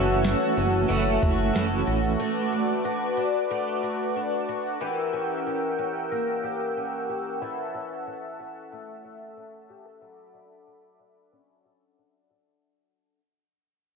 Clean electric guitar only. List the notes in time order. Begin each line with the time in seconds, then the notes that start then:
Already playing: E3 A3 C#4 F#4
0.89 E3 A3 C#4
0.93 F#4
1.53 E3 A3 C#4 F#4